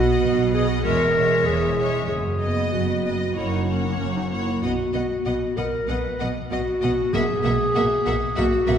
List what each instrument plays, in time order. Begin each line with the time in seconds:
Already playing: double bass section B1, cello section B2, viola section B3, clarinet F#4, violin section D#5 F#5
0.21 double bass section B1, cello section B2
0.53 viola section B3, clarinet G#4, violin section D#5 F#5
0.84 double bass section E1, cello section E2, viola section G#3, clarinet A#4, violin section C#5 E5
1.15 viola section G#3, violin section C#5 E5
1.46 double bass section E1, cello section E2, clarinet G#4
1.78 viola section G#3, violin section C#5 E5
2.09 double bass section F#1, cello section F#2, clarinet G#4
2.42 viola section B3, violin section D#5
2.72 double bass section F#1, cello section F#2, clarinet F#4
3.05 viola section B3, violin section D#5
3.35 double bass section F#1, cello section F#2, viola section A#3, clarinet E4, violin section C#5 F#5
3.53 clarinet D#4
3.68 viola section A#3, clarinet C#4, violin section C#5 F#5
3.86 clarinet B3
3.99 double bass section F#1, cello section F#2, clarinet C#4
4.16 clarinet D#4
4.31 viola section A#3, clarinet E4, violin section C#5 F#5
4.62 double bass section B1, cello section B2, viola section B3, clarinet F#4, violin section D#5 F#5
4.93 double bass section B1, cello section B2, viola section B3, violin section D#5 F#5
5.25 double bass section B1, cello section B2, viola section B3, violin section D#5 F#5
5.57 double bass section B1, cello section B2, viola section B3, clarinet A#4, violin section D#5 F#5
5.88 double bass section B1, cello section B2, viola section B3, clarinet B4, violin section D#5 F#5
6.19 double bass section B1, cello section B2, viola section B3, violin section D#5 F#5
6.51 double bass section B1, cello section B2, viola section B3, clarinet F#4, violin section D#5 F#5
6.82 double bass section B1, cello section B2, viola section B3, violin section D#5 F#5
7.13 double bass section B1, timpani B2, cello section B2, viola section A#3, clarinet G#4, violin section E5 F#5
7.44 double bass section B1, cello section B2, viola section A#3, violin section E5 F#5
7.75 double bass section B1, cello section B2, viola section A#3, violin section E5 F#5
8.05 double bass section B1, cello section B2, viola section A#3, violin section E5 F#5
8.36 double bass section B1, cello section B2, viola section A#3, clarinet F#4, violin section E5 F#5
8.67 double bass section B1, cello section B2, viola section A#3, violin section E5 F#5